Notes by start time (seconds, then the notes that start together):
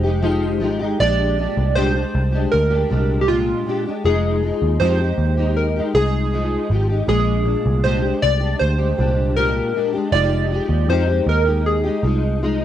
Already playing: F1 C5
0.03 D#4 G4
0.08 G#3
0.22 F3 G#3 D#4 G4
0.60 G#1 F3 G#3 D#4
0.64 G4
0.79 D#4 G4
0.83 G#3
0.99 A#1 A#2 G#3 D4 G4 D5
1.37 A#2 G#3 D4
1.41 G4
1.57 C2
1.75 A#2 G#3 D4 G4 C5
1.93 G#3 D4 G4
2.15 C2
2.32 G#3 D4 G4
2.52 D2 A#4
2.70 G#3 D4 G4
2.89 C2 A#2 G#3 D4 G4
3.21 G4
3.27 A#2 G#3 D4 F4 G4
3.65 A#2 G#3 D4 G4
3.86 G#3 D4 G4
4.04 F1 F3 G#3 D#4 G#4
4.42 F3 G#3 D#4
4.62 D#2
4.80 F2 F3 G#3 D#4 G4 C5
5.00 D#4 G4
5.04 G#3
5.18 D#2
5.37 D#4 G4
5.41 G#3
5.57 A#4
5.76 G#3 D#4 G4
5.94 C2 F3 G#3 D#4 G#4
6.33 F3 G#3 D#4
6.70 G#1 F3 G#3 D#4
6.74 G4
6.89 G#3 D#4 G4
7.07 A#1 A#2 G#3 D4 G#4
7.44 A#2 G#3 D4
7.66 C2
7.83 A#2 G#3 D4 G4 C5
8.01 D4 G4
8.06 G#3
8.22 C2 D5
8.40 D4 G4
8.44 G#3
8.59 D2 C5
8.78 G#3 D4 G4
8.97 C2 A#2 G#3 D4 G4
9.36 A#2 G#3 D4 G4 A#4
9.75 A#2 G#3 D4 G4
9.93 D4 G4
9.97 G#3
10.12 F1 F3 G#3 D#4 G4 D5
10.51 F3 G#3 D#4 G4
10.69 D#2
10.88 F2 F3 G#3 D#4 G4 C5
11.07 D#4 G4
11.11 G#3
11.26 D#2 A#4
11.45 D#4 G4
11.49 G#3
11.66 G#4
11.84 G#3 D#4 G4
12.03 C2 F3 G#3 D#4
12.42 F3 G#3 D#4